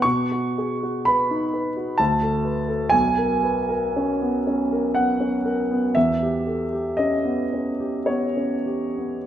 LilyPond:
\new Staff \with { instrumentName = "Grand piano" } { \time 3/4 \key e \major \tempo 4 = 59 << { cis'''4 b''4 a''4 | gis''2 fis''8 r8 | e''4 dis''4 cis''4 | } \\ { b,16 fis'16 gis'16 fis'16 b'16 dis'16 b'16 fis'16 d,16 a'16 b'16 a'16 | b,,16 ais'16 b'16 ais'16 cis'16 b16 cis'16 ais'16 b16 cis'16 ais'16 b16 | e,16 g'16 a'16 g'16 cis'16 b16 cis'16 g'16 b16 cis'16 g'16 b16 | } >> }